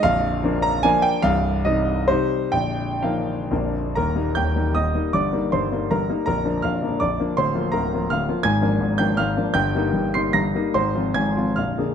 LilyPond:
<<
  \new Staff \with { instrumentName = "Grand piano" } { \time 3/4 \key ees \major \tempo 4 = 153 f''4. bes''8 aes''8 g''8 | f''4 ees''4 c''4 | g''4 f''4. r8 | <bes' bes''>4 <g'' g'''>4 <ees'' ees'''>4 |
<d'' d'''>4 <c'' c'''>4 <bes' bes''>4 | <bes' bes''>4 <f'' f'''>4 <d'' d'''>4 | <c'' c'''>4 <bes' bes''>4 <f'' f'''>4 | <aes'' aes'''>4. <g'' g'''>8 <f'' f'''>4 |
<g'' g'''>4. <c''' c''''>8 <bes'' bes'''>8 r8 | <c'' c'''>4 <aes'' aes'''>4 <f'' f'''>4 | }
  \new Staff \with { instrumentName = "Grand piano" } { \clef bass \time 3/4 \key ees \major <bes,,, bes,,>4 <f bes d'>4 <f bes d'>4 | <c,, c,>4 <c g ees'>4 <c g ees'>4 | <bes,,, bes,,>4 <f bes ees'>4 <bes,,, bes,, f bes d'>4 | <ees,, ees,>8 <g bes ees'>8 <ees,, ees,>8 <g bes ees'>8 <ees,, ees,>8 <g bes ees'>8 |
<g,, g,>8 <g bes ees'>8 <g,, g,>8 <g bes ees'>8 <g,, g,>8 <g bes ees'>8 | <bes,,, bes,,>8 <f bes d'>8 <bes,,, bes,,>8 <f bes d'>8 <bes,,, bes,,>8 <f bes d'>8 | <d,, d,>8 <f bes f'>8 <d,, d,>8 <f bes f'>8 <d,, d,>8 <f bes f'>8 | <aes,, aes,>8 <f bes d'>8 <aes,, aes,>8 <f bes d'>8 <aes,, aes,>8 <f bes d'>8 |
<g,, g,>8 <g bes ees'>8 <g,, g,>8 <g bes ees'>8 <g,, g,>8 <g bes ees'>8 | <aes,, aes,>8 <f c' f'>8 <aes,, aes,>8 <f c' f'>8 <bes,,, bes,,>8 <d bes aes'>8 | }
>>